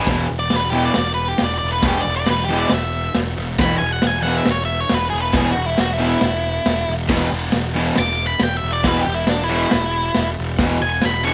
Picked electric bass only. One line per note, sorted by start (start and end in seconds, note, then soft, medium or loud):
0.07 0.26 E1 loud
0.30 0.48 E1 medium
0.52 0.88 E1 loud
0.96 1.32 E1 medium
1.41 1.58 E1 medium
1.63 1.80 E1 medium
1.83 2.01 E1 loud
2.06 2.24 E1 medium
2.28 2.64 E1 loud
2.72 3.08 E1 medium
3.15 3.33 E1 medium
3.37 3.55 E1 loud
3.58 3.77 E1 loud
3.81 3.99 E1 medium
4.03 4.39 E1 medium
4.47 4.83 E1 medium
4.91 5.09 E1 medium
5.12 5.31 E1 medium
5.34 5.52 E1 loud
5.56 5.74 E1 medium
5.78 6.14 E1 medium
6.21 6.58 E1 medium
6.66 6.84 E1 medium
6.88 7.06 E1 medium
7.09 7.27 E1 loud
7.31 7.49 E1 loud
7.53 7.89 E1 loud
7.97 8.33 E1 medium
8.41 8.59 E1 medium
8.63 8.81 E1 medium
8.84 9.02 E1 loud
9.06 9.24 E1 loud
9.28 9.64 E1 loud
9.73 10.09 E1 medium
10.16 10.34 E1 medium
10.38 10.56 E1 loud
10.59 10.77 E1 loud
10.81 10.99 E1 loud
11.03 11.34 E1 loud